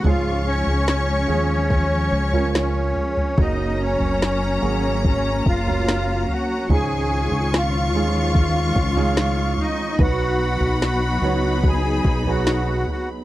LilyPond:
<<
  \new Staff \with { instrumentName = "Violin section" } { \time 4/4 \key cis \mixolydian \tempo 4 = 72 cis'''2 cis'''4. r8 | ais''1 | cis'''1 | b''1 | }
  \new Staff \with { instrumentName = "Accordion" } { \time 4/4 \key cis \mixolydian <eis' eis''>8 <cis' cis''>2~ <cis' cis''>8 <cis' cis''>4 | <dis' dis''>8 <cis' cis''>4. <cis' cis''>8 <eis' eis''>4 <fis' fis''>8 | <gis' gis''>4 <eis' eis''>2~ <eis' eis''>8 <dis' dis''>8 | <fis' fis''>4 <fis' fis''>4 <gis' gis''>8. <fis' fis''>8. <fis' fis''>8 | }
  \new Staff \with { instrumentName = "Grand piano" } { \time 4/4 \key cis \mixolydian <gis, eis gis cis' eis' gis'>4. <eis gis cis' eis' gis'>4~ <eis gis cis' eis' gis'>16 <eis gis cis' eis' ais'>4~ <eis gis cis' eis' ais'>16 | <cis fis ais cis' fis' ais'>4. <fis ais cis' fis' gis'>4~ <fis ais cis' fis' gis'>16 <fis ais cis' ais' cis''>4~ <fis ais cis' ais' cis''>16 | <gis, gis cis' dis' eis' gis'>4. <gis cis' dis' eis' gis'>4~ <gis cis' dis' eis' gis'>16 <gis cis' dis' eis' gis'>4~ <gis cis' dis' eis' gis'>16 | <fis b dis' fis' b'>4. <fis b dis' fis' cis''>4~ <fis b dis' fis' cis''>16 <fis b dis' fis' gis'>4~ <fis b dis' fis' gis'>16 | }
  \new Staff \with { instrumentName = "String section" } { \clef bass \time 4/4 \key cis \mixolydian << { cis'1~ | cis'1 | <dis eis eis'>1 | dis'1 | } \\ { <eis gis>1 | <fis ais>1 | gis1 | <fis b>1 | } >> }
  \new Staff \with { instrumentName = "Fingered electric bass" } { \clef bass \time 4/4 \key cis \mixolydian cis,8. cis,8. dis,4 cis,4 r8 | fis,,8. fis,,8. gis,,4 fis,,4 r8 | cis,8. cis,8. dis,4 cis,4 r8 | b,,8. b,,8. cis,4 b,,4 r8 | }
  \new DrumStaff \with { instrumentName = "Drums" } \drummode { \time 4/4 tomfh8. tomfh16 sn4 <bd tomfh>8. tomfh16 sn8 tomfh16 tomfh16 | <bd tomfh>8. tomfh16 sn4 <bd tomfh>8 bd16 tomfh16 sn8 tomfh8 | tomfh8. tomfh16 sn4 <bd tomfh>8 bd16 tomfh16 sn8 tomfh8 | <bd tomfh>8. tomfh16 sn4 <bd tomfh>8 bd16 tomfh16 sn8 tomfh8 | }
>>